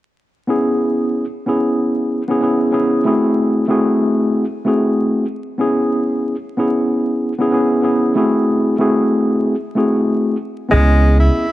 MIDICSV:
0, 0, Header, 1, 4, 480
1, 0, Start_track
1, 0, Key_signature, 4, "minor"
1, 0, Tempo, 638298
1, 379, Time_signature, 4, 2, 24, 8
1, 8664, End_track
2, 0, Start_track
2, 0, Title_t, "Tine electric piano"
2, 0, Program_c, 0, 4
2, 356, Note_on_c, 0, 59, 86
2, 363, Note_on_c, 0, 61, 83
2, 370, Note_on_c, 0, 64, 82
2, 377, Note_on_c, 0, 68, 104
2, 929, Note_off_c, 0, 59, 0
2, 932, Note_off_c, 0, 61, 0
2, 936, Note_off_c, 0, 64, 0
2, 939, Note_off_c, 0, 68, 0
2, 1100, Note_on_c, 0, 59, 90
2, 1107, Note_on_c, 0, 61, 85
2, 1114, Note_on_c, 0, 64, 85
2, 1121, Note_on_c, 0, 68, 99
2, 1660, Note_off_c, 0, 59, 0
2, 1664, Note_off_c, 0, 61, 0
2, 1668, Note_off_c, 0, 64, 0
2, 1671, Note_off_c, 0, 68, 0
2, 1716, Note_on_c, 0, 59, 98
2, 1723, Note_on_c, 0, 61, 80
2, 1730, Note_on_c, 0, 64, 82
2, 1737, Note_on_c, 0, 68, 98
2, 1802, Note_off_c, 0, 59, 0
2, 1809, Note_off_c, 0, 61, 0
2, 1811, Note_on_c, 0, 59, 72
2, 1817, Note_off_c, 0, 64, 0
2, 1818, Note_on_c, 0, 61, 66
2, 1823, Note_off_c, 0, 68, 0
2, 1826, Note_on_c, 0, 64, 64
2, 1832, Note_on_c, 0, 68, 75
2, 2031, Note_off_c, 0, 59, 0
2, 2038, Note_off_c, 0, 61, 0
2, 2040, Note_on_c, 0, 59, 67
2, 2046, Note_off_c, 0, 64, 0
2, 2047, Note_on_c, 0, 61, 75
2, 2049, Note_off_c, 0, 68, 0
2, 2054, Note_on_c, 0, 64, 69
2, 2060, Note_on_c, 0, 68, 88
2, 2273, Note_off_c, 0, 59, 0
2, 2276, Note_off_c, 0, 61, 0
2, 2280, Note_off_c, 0, 64, 0
2, 2283, Note_off_c, 0, 68, 0
2, 2291, Note_on_c, 0, 57, 96
2, 2296, Note_on_c, 0, 60, 89
2, 2301, Note_on_c, 0, 64, 86
2, 2307, Note_on_c, 0, 66, 85
2, 2312, Note_on_c, 0, 68, 97
2, 2741, Note_off_c, 0, 57, 0
2, 2744, Note_off_c, 0, 60, 0
2, 2747, Note_off_c, 0, 64, 0
2, 2749, Note_off_c, 0, 66, 0
2, 2752, Note_off_c, 0, 68, 0
2, 2768, Note_on_c, 0, 57, 97
2, 2773, Note_on_c, 0, 60, 83
2, 2778, Note_on_c, 0, 64, 82
2, 2784, Note_on_c, 0, 66, 88
2, 2789, Note_on_c, 0, 68, 105
2, 3335, Note_off_c, 0, 57, 0
2, 3337, Note_off_c, 0, 60, 0
2, 3340, Note_off_c, 0, 64, 0
2, 3343, Note_off_c, 0, 66, 0
2, 3345, Note_off_c, 0, 68, 0
2, 3496, Note_on_c, 0, 57, 92
2, 3502, Note_on_c, 0, 60, 85
2, 3507, Note_on_c, 0, 64, 73
2, 3512, Note_on_c, 0, 66, 83
2, 3517, Note_on_c, 0, 68, 96
2, 3944, Note_off_c, 0, 57, 0
2, 3947, Note_off_c, 0, 60, 0
2, 3949, Note_off_c, 0, 64, 0
2, 3952, Note_off_c, 0, 66, 0
2, 3955, Note_off_c, 0, 68, 0
2, 4197, Note_on_c, 0, 59, 87
2, 4204, Note_on_c, 0, 61, 86
2, 4212, Note_on_c, 0, 64, 82
2, 4218, Note_on_c, 0, 68, 113
2, 4769, Note_off_c, 0, 59, 0
2, 4773, Note_off_c, 0, 61, 0
2, 4777, Note_off_c, 0, 64, 0
2, 4780, Note_off_c, 0, 68, 0
2, 4940, Note_on_c, 0, 59, 92
2, 4947, Note_on_c, 0, 61, 84
2, 4955, Note_on_c, 0, 64, 86
2, 4961, Note_on_c, 0, 68, 98
2, 5501, Note_off_c, 0, 59, 0
2, 5504, Note_off_c, 0, 61, 0
2, 5508, Note_off_c, 0, 64, 0
2, 5511, Note_off_c, 0, 68, 0
2, 5554, Note_on_c, 0, 59, 96
2, 5561, Note_on_c, 0, 61, 80
2, 5569, Note_on_c, 0, 64, 89
2, 5575, Note_on_c, 0, 68, 105
2, 5640, Note_off_c, 0, 59, 0
2, 5647, Note_off_c, 0, 61, 0
2, 5649, Note_on_c, 0, 59, 74
2, 5654, Note_off_c, 0, 64, 0
2, 5656, Note_on_c, 0, 61, 71
2, 5662, Note_off_c, 0, 68, 0
2, 5663, Note_on_c, 0, 64, 66
2, 5671, Note_on_c, 0, 68, 77
2, 5870, Note_off_c, 0, 59, 0
2, 5877, Note_off_c, 0, 61, 0
2, 5879, Note_on_c, 0, 59, 67
2, 5884, Note_off_c, 0, 64, 0
2, 5886, Note_on_c, 0, 61, 78
2, 5888, Note_off_c, 0, 68, 0
2, 5893, Note_on_c, 0, 64, 68
2, 5900, Note_on_c, 0, 68, 83
2, 6112, Note_off_c, 0, 59, 0
2, 6116, Note_off_c, 0, 61, 0
2, 6119, Note_off_c, 0, 64, 0
2, 6123, Note_off_c, 0, 68, 0
2, 6129, Note_on_c, 0, 57, 96
2, 6134, Note_on_c, 0, 60, 89
2, 6139, Note_on_c, 0, 64, 88
2, 6145, Note_on_c, 0, 66, 88
2, 6150, Note_on_c, 0, 68, 96
2, 6581, Note_off_c, 0, 57, 0
2, 6583, Note_off_c, 0, 60, 0
2, 6586, Note_off_c, 0, 64, 0
2, 6588, Note_off_c, 0, 66, 0
2, 6591, Note_off_c, 0, 68, 0
2, 6606, Note_on_c, 0, 57, 97
2, 6611, Note_on_c, 0, 60, 83
2, 6616, Note_on_c, 0, 64, 82
2, 6622, Note_on_c, 0, 66, 87
2, 6627, Note_on_c, 0, 68, 106
2, 7174, Note_off_c, 0, 57, 0
2, 7176, Note_off_c, 0, 60, 0
2, 7179, Note_off_c, 0, 64, 0
2, 7182, Note_off_c, 0, 66, 0
2, 7184, Note_off_c, 0, 68, 0
2, 7334, Note_on_c, 0, 57, 95
2, 7340, Note_on_c, 0, 60, 82
2, 7345, Note_on_c, 0, 64, 74
2, 7350, Note_on_c, 0, 66, 83
2, 7356, Note_on_c, 0, 68, 96
2, 7783, Note_off_c, 0, 57, 0
2, 7786, Note_off_c, 0, 60, 0
2, 7788, Note_off_c, 0, 64, 0
2, 7791, Note_off_c, 0, 66, 0
2, 7794, Note_off_c, 0, 68, 0
2, 8037, Note_on_c, 0, 59, 90
2, 8043, Note_on_c, 0, 61, 84
2, 8051, Note_on_c, 0, 64, 80
2, 8058, Note_on_c, 0, 68, 110
2, 8609, Note_off_c, 0, 59, 0
2, 8612, Note_off_c, 0, 61, 0
2, 8616, Note_off_c, 0, 64, 0
2, 8619, Note_off_c, 0, 68, 0
2, 8664, End_track
3, 0, Start_track
3, 0, Title_t, "Tenor saxophone"
3, 0, Program_c, 1, 66
3, 8054, Note_on_c, 1, 56, 112
3, 8409, Note_off_c, 1, 56, 0
3, 8423, Note_on_c, 1, 64, 80
3, 8664, Note_off_c, 1, 64, 0
3, 8664, End_track
4, 0, Start_track
4, 0, Title_t, "Upright bass"
4, 0, Program_c, 2, 32
4, 8062, Note_on_c, 2, 37, 99
4, 8479, Note_off_c, 2, 37, 0
4, 8664, End_track
0, 0, End_of_file